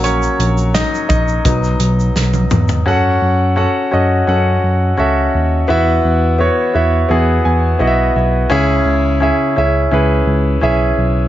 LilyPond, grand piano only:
<<
  \new Staff \with { instrumentName = "Grand piano" } { \time 4/4 \key fis \dorian \tempo 4 = 85 << { <cis' cis''>4 <dis' dis''>8 <dis' dis''>4. r4 | r1 | r2 r8 gis''8 fis''8 e''8 | r1 | } \\ { r1 | <cis' fis' a' fis''>4 <cis' fis' a' fis''>8 <cis' fis' a' dis''>8 <cis' fis' a' fis''>4 <cis' fis' a' e''>4 | <b e' fis' e''>4 <b e' fis' cis''>8 <b e' fis' e''>8 <b e' fis' gis'>4 <b e' fis' dis'' e''>4 | <cis' e' gis' e''>4 <cis' e' gis' e''>8 <cis' e' gis' e''>8 <cis' e' gis' b'>4 <cis' e' gis' e''>4 | } >> }
  \new Staff \with { instrumentName = "Grand piano" } { \clef bass \time 4/4 \key fis \dorian <fis ais cis'>8 r4. <fis b dis'>4. r8 | r1 | e4. r2 r8 | cis4. r2 r8 | }
>>